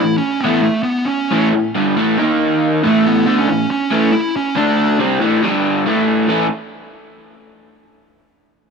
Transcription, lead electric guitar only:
Already playing: E4
0.18 C#4
0.40 B3
0.63 A3
0.83 B3
1.05 C#4
2.87 A3
3.06 B3
3.39 C#4
3.71 C#4
4.13 E4
4.36 C#4
4.57 D4

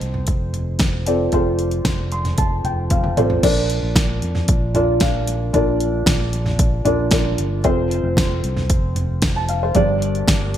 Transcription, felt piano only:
Already playing: C4 F4 A4 C5 D#5
1.06 C4 F4 A4 D5
1.33 C4 F4 A4 C5
2.12 C6
2.38 A5
2.65 G5
2.91 F5
3.17 C4 F4 A4 C5 D5
3.43 A#2 D4 F4 A#4 D5
4.74 D4 F4 A#4 D5
5.01 D4 F4 A#4 F5
5.53 A#2 D4 F4 A#4 D5
6.85 D4 F4 A#4 D5
7.11 D4 F4 A#4 D5
7.64 C4 F4 A4 C5
9.36 A5
9.49 F5
9.63 C5
9.75 G2 D4 G4 A#4 D5

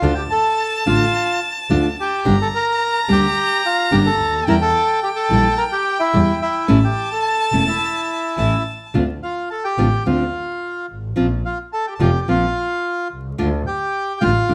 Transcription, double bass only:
0.02 D2
0.86 A1
1.70 D2
2.25 G1
3.08 D2
3.91 G1
4.19 D2
4.47 E2
5.30 A#1
6.13 E2
6.69 A1
7.52 E1
8.37 A1
8.94 D2
9.78 A1
10.06 D2
10.89 G#1
11.17 A#1
12.00 F1
12.28 A#1
13.11 C2
13.39 D2
14.22 A1
14.50 D2

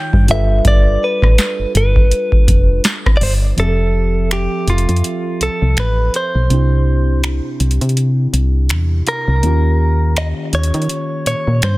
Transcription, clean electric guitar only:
Already playing: G5
0.31 E5
0.68 D5
1.04 B4
1.77 B4
3.17 D5
3.23 C5
3.60 A4
4.33 G4
4.70 F4
5.43 A4
5.80 B4
6.16 C5
9.08 A#4
10.18 D#5
10.55 C#5
11.27 C#5
11.64 C5

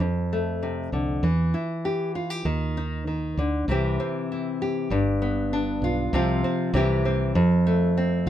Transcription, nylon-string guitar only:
0.00 F2
0.33 A3
0.63 C3
0.93 D3
1.23 E3
1.54 E4
1.85 G4
2.15 F4
2.30 G4
2.45 D#3
2.77 D#4
3.07 D#3
3.38 D3
3.69 C3 E3 C4 E4 G4
4.00 C4
4.32 E4
4.62 G4
4.91 G2
5.22 B3
5.53 D4
5.84 F4
6.13 C3 F3 C4 F4
6.44 C4
6.74 C3 E3 C4 E4 G4
7.05 C4
7.35 F2
7.67 A3
7.97 C4

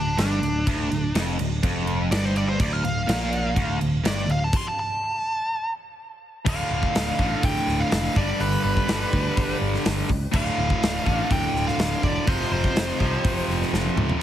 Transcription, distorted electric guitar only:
Already playing: D2
0.17 G2
0.41 D2
0.66 D2
0.90 D2
1.14 F2
1.39 D2
1.63 F2
2.11 G2
2.60 D2
2.84 D2
3.07 A#2
3.56 D2
3.81 D2
4.04 G2
4.27 D2
6.45 D2 A2 D3
7.17 D2 A2 D3
8.15 G2 D3 G3
8.88 G2 D3 G3
10.32 D2 A2 D3
11.04 D2 A2 D3
12.26 F2 C3 F3
12.99 F2 C3 F3
14.19 D2

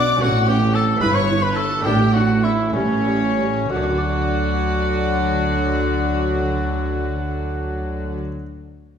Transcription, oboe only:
Already playing: D5
0.21 F#4
0.48 G4
0.74 A4
1.01 B4
1.15 C#5
1.42 B4
1.56 A4
1.85 G4
2.14 F#4
2.44 E4
2.74 C#4
3.70 F#4

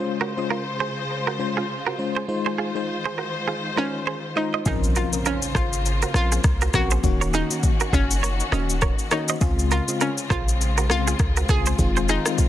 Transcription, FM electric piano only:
Already playing: G#3 C#4 F4 C5
0.37 G#3 C#4 F4 C5
1.39 G#3 C#4 F4 C5
1.98 G#3 C#4 F4 C5
2.28 G#3 D#4 F4 C5
2.75 G#3 D#4 F4 C5
3.76 G#3 D#4 F4 C5
4.36 G#3 D#4 F4 C5
4.65 F3 C4 C#4 A#4
5.13 F3 C4 C#4 A#4
6.14 F3 C4 C#4 A#4
6.73 F3 C4 C#4 A#4
7.03 D#3 A#3 C#4 F#4
7.50 D#3 A#3 C#4 F#4
8.52 D#3 A#3 C#4 F#4
9.11 D#3 A#3 C#4 F#4
9.41 C#3 G#3 C4 F4
9.88 C#3 G#3 C4 F4
10.89 C#3 G#3 C4 F4
11.49 C#3 G#3 C4 F4
11.78 D#3 G#3 C4 F4
12.25 D#3 G#3 C4 F4

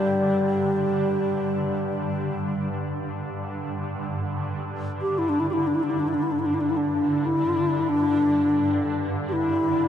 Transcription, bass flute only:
Already playing: G3
5.02 G4
5.18 E4
5.29 D4
5.40 E4
5.50 E4 G4
5.67 D4
5.75 E4
5.83 D4
5.91 E4
6.00 D4
6.08 E4
6.14 D4
6.23 E4
6.32 D4
6.39 E4
6.46 D4
6.54 E4
6.61 D4
6.70 E4
6.77 D4
7.26 E4
7.89 D4
9.29 E4 G4

